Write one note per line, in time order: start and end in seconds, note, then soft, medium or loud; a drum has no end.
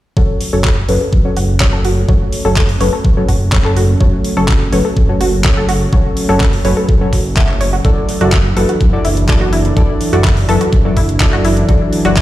0.16 0.26 F#1 medium
0.16 12.21 F#3 medium
0.16 0.50 F#3 medium
0.16 7.81 A3 medium
0.16 7.81 C#4 medium
0.16 0.50 C#4 medium
0.16 0.50 F#4 medium
0.16 0.50 A4 medium
0.16 0.50 C#5 medium
0.16 0.24 C#5 medium
0.16 kick loud
0.41 open hi-hat loud
0.53 0.84 F#1 medium
0.53 0.63 F#3 medium
0.53 0.63 C#4 medium
0.53 0.63 F#4 medium
0.53 0.63 A4 medium
0.53 0.63 C#5 medium
0.64 0.75 F#4 medium
0.64 kick loud
0.64 clap loud
0.89 0.98 F#1 medium
0.89 0.95 F#3 medium
0.89 0.95 C#4 medium
0.89 0.95 F#4 medium
0.89 0.95 A4 medium
0.89 0.95 B4 medium
0.89 0.93 C#5 medium
0.89 open hi-hat medium
1.01 1.11 A4 medium
1.13 1.31 F#2 medium
1.13 kick loud
1.25 1.31 F#3 medium
1.25 1.31 C#4 medium
1.25 1.31 F#4 medium
1.25 1.31 A4 medium
1.25 1.31 C#5 medium
1.37 1.68 F#1 medium
1.37 1.44 F#4 medium
1.37 open hi-hat loud
1.60 2.06 F#3 medium
1.60 2.06 C#4 medium
1.60 2.06 F#4 medium
1.60 2.06 A4 medium
1.60 2.06 C#5 loud
1.60 1.65 C#5 medium
1.60 kick loud
1.60 clap loud
1.73 2.04 F#1 medium
1.73 1.77 A4 loud
1.85 1.89 F#4 medium
1.85 open hi-hat medium
2.09 2.18 F#1 medium
2.09 2.42 F#3 medium
2.09 2.42 C#4 medium
2.09 2.42 F#4 medium
2.09 2.42 A4 medium
2.09 2.42 C#5 medium
2.09 2.16 C#5 medium
2.09 kick loud
2.33 open hi-hat loud
2.45 2.76 F#1 medium
2.45 2.55 F#3 medium
2.45 2.55 C#4 medium
2.45 2.55 F#4 medium
2.45 2.55 A4 loud
2.45 2.55 A4 medium
2.45 2.55 C#5 medium
2.56 2.67 F#4 medium
2.56 kick loud
2.56 clap loud
2.69 open hi-hat medium
2.81 2.90 F#1 loud
2.81 2.87 F#3 medium
2.81 2.87 C#4 medium
2.81 2.87 F#4 medium
2.81 2.87 A4 medium
2.81 2.87 B4 medium
2.81 2.85 C#5 loud
2.81 open hi-hat loud
2.93 3.03 A4 medium
3.05 3.23 F#2 medium
3.05 kick loud
3.17 3.23 F#3 medium
3.17 3.23 C#4 medium
3.17 3.23 F#4 medium
3.17 3.23 A4 medium
3.17 3.23 C#5 medium
3.29 3.60 F#1 medium
3.29 3.36 F#4 medium
3.29 kick medium
3.29 open hi-hat loud
3.52 3.98 F#3 medium
3.52 3.98 C#4 medium
3.52 3.98 F#4 medium
3.52 3.98 A4 medium
3.52 3.98 C#5 loud
3.52 3.57 C#5 medium
3.52 kick loud
3.52 clap loud
3.65 3.96 F#1 medium
3.65 3.69 A4 loud
3.65 clap soft
3.77 3.81 F#4 medium
3.77 open hi-hat loud
4.01 4.10 F#1 medium
4.01 4.34 F#3 medium
4.01 4.34 C#4 medium
4.01 4.34 F#4 medium
4.01 4.34 A4 medium
4.01 4.34 C#5 medium
4.01 4.08 C#5 medium
4.01 kick loud
4.25 open hi-hat loud
4.37 4.68 F#1 medium
4.37 4.47 F#3 medium
4.37 4.47 C#4 medium
4.37 4.47 F#4 medium
4.37 4.47 A4 medium
4.37 4.47 A4 loud
4.37 4.47 C#5 medium
4.48 4.59 F#4 medium
4.48 kick loud
4.48 clap loud
4.73 4.82 F#1 loud
4.73 4.79 F#3 medium
4.73 4.79 C#4 medium
4.73 4.79 F#4 medium
4.73 4.79 A4 medium
4.73 4.79 B4 medium
4.73 4.77 C#5 loud
4.73 open hi-hat loud
4.85 4.95 A4 medium
4.97 5.15 F#2 medium
4.97 kick loud
5.09 5.15 F#3 medium
5.09 5.15 C#4 medium
5.09 5.15 F#4 medium
5.09 5.15 A4 medium
5.09 5.15 C#5 medium
5.21 5.52 F#1 medium
5.21 5.28 F#4 loud
5.21 open hi-hat loud
5.44 5.90 F#3 medium
5.44 5.90 C#4 medium
5.44 5.90 F#4 medium
5.44 5.90 A4 medium
5.44 5.90 C#5 loud
5.44 5.49 C#5 medium
5.44 kick loud
5.44 clap loud
5.57 5.88 F#1 medium
5.57 5.61 A4 loud
5.69 5.73 F#4 loud
5.69 open hi-hat loud
5.93 6.02 F#1 medium
5.93 6.26 F#3 medium
5.93 6.26 C#4 medium
5.93 6.26 F#4 medium
5.93 6.26 A4 medium
5.93 6.26 C#5 medium
5.93 6.00 C#5 medium
5.93 kick loud
6.17 open hi-hat loud
6.29 6.60 F#1 medium
6.29 6.39 F#3 medium
6.29 6.39 C#4 medium
6.29 6.39 F#4 medium
6.29 6.39 A4 medium
6.29 6.39 C#5 medium
6.40 6.51 F#4 medium
6.40 kick loud
6.40 clap loud
6.53 open hi-hat medium
6.65 6.74 F#1 medium
6.65 6.71 F#3 medium
6.65 6.71 C#4 medium
6.65 6.71 F#4 medium
6.65 6.71 A4 medium
6.65 6.71 B4 medium
6.65 6.69 C#5 loud
6.65 open hi-hat loud
6.77 6.87 A4 medium
6.89 7.07 F#2 medium
6.89 kick loud
7.01 7.07 F#3 medium
7.01 7.07 C#4 medium
7.01 7.07 F#4 medium
7.01 7.07 A4 medium
7.01 7.07 C#5 medium
7.13 7.44 F#1 medium
7.13 7.17 F#4 medium
7.13 kick medium
7.13 open hi-hat loud
7.36 7.43 F#3 medium
7.36 7.43 C#4 medium
7.36 7.43 F#4 medium
7.36 7.43 A4 medium
7.36 7.43 E5 loud
7.36 7.44 F#5 medium
7.36 kick loud
7.36 clap loud
7.49 7.80 F#1 medium
7.49 7.53 C#5 medium
7.49 clap soft
7.61 7.71 C#5 loud
7.61 open hi-hat loud
7.73 7.77 F#4 medium
7.85 7.94 F#1 loud
7.85 12.21 E3 medium
7.85 8.18 F#3 medium
7.85 12.21 D4 medium
7.85 8.18 E4 medium
7.85 8.18 F#4 medium
7.85 7.92 A4 medium
7.85 8.18 A4 medium
7.85 8.18 D5 medium
7.85 kick loud
7.85 closed hi-hat soft
8.09 open hi-hat loud
8.21 8.52 F#1 medium
8.21 8.31 F#3 medium
8.21 8.31 E4 medium
8.21 8.31 F#4 medium
8.21 8.31 F#4 loud
8.21 8.31 A4 medium
8.21 8.31 D5 medium
8.21 closed hi-hat medium
8.32 8.43 E4 medium
8.32 kick loud
8.32 clap loud
8.32 closed hi-hat soft
8.56 8.66 F#1 loud
8.56 8.63 F#3 medium
8.56 8.63 E4 medium
8.56 8.63 F#4 medium
8.56 8.63 A4 medium
8.56 8.61 A4 loud
8.56 8.63 B4 medium
8.56 open hi-hat loud
8.69 8.79 F#4 medium
8.69 closed hi-hat medium
8.81 8.99 F#2 medium
8.81 kick loud
8.81 closed hi-hat soft
8.93 8.99 F#3 medium
8.93 8.99 E4 medium
8.93 8.99 F#4 medium
8.93 8.99 A4 medium
8.93 8.99 D5 medium
9.05 9.36 F#1 medium
9.05 9.12 E4 loud
9.05 open hi-hat loud
9.17 closed hi-hat medium
9.28 9.74 F#3 medium
9.28 9.74 E4 medium
9.28 9.74 F#4 medium
9.28 9.74 A4 medium
9.28 9.33 A4 medium
9.28 9.74 D5 loud
9.28 kick loud
9.28 clap loud
9.28 closed hi-hat soft
9.41 9.72 F#1 medium
9.41 9.45 F#4 loud
9.53 9.57 E4 medium
9.53 open hi-hat loud
9.65 closed hi-hat medium
9.77 9.86 F#1 loud
9.77 10.10 F#3 medium
9.77 10.10 E4 medium
9.77 10.10 F#4 medium
9.77 10.10 A4 medium
9.77 9.84 A4 medium
9.77 10.10 D5 medium
9.77 kick loud
9.77 closed hi-hat soft
10.01 open hi-hat loud
10.13 10.44 F#1 medium
10.13 10.23 F#3 medium
10.13 10.23 E4 medium
10.13 10.23 F#4 medium
10.13 10.23 A4 medium
10.13 10.23 D5 medium
10.13 closed hi-hat medium
10.24 10.35 E4 medium
10.24 kick loud
10.24 clap loud
10.24 closed hi-hat soft
10.37 open hi-hat medium
10.49 10.58 F#1 loud
10.49 10.55 F#3 medium
10.49 10.55 E4 medium
10.49 10.55 F#4 medium
10.49 10.53 A4 loud
10.49 10.55 A4 medium
10.49 10.55 B4 medium
10.49 open hi-hat medium
10.61 10.71 F#4 medium
10.61 closed hi-hat medium
10.73 10.91 F#2 medium
10.73 kick loud
10.73 closed hi-hat soft
10.85 10.91 F#3 medium
10.85 10.91 E4 medium
10.85 10.91 F#4 medium
10.85 10.91 A4 medium
10.85 10.91 D5 medium
10.97 11.28 F#1 medium
10.97 11.04 E4 loud
10.97 kick medium
10.97 open hi-hat medium
11.09 closed hi-hat medium
11.20 11.66 F#3 medium
11.20 11.66 E4 medium
11.20 11.66 F#4 medium
11.20 11.66 A4 medium
11.20 11.25 A4 medium
11.20 11.66 D5 loud
11.20 kick loud
11.20 clap loud
11.20 closed hi-hat medium
11.33 11.64 F#1 medium
11.33 11.37 F#4 loud
11.33 clap soft
11.45 11.49 E4 loud
11.45 open hi-hat medium
11.57 closed hi-hat medium
11.69 11.78 F#1 loud
11.69 12.02 F#3 medium
11.69 12.02 E4 medium
11.69 12.02 F#4 medium
11.69 12.02 A4 medium
11.69 11.76 A4 medium
11.69 12.02 D5 medium
11.69 kick loud
11.69 closed hi-hat soft
11.93 open hi-hat loud
12.05 12.21 F#1 medium
12.05 12.15 F#3 medium
12.05 12.15 E4 medium
12.05 12.15 F#4 medium
12.05 12.15 F#4 loud
12.05 12.15 A4 medium
12.05 12.15 D5 medium
12.05 closed hi-hat medium
12.16 12.21 E4 medium
12.16 kick loud
12.16 clap loud
12.16 closed hi-hat medium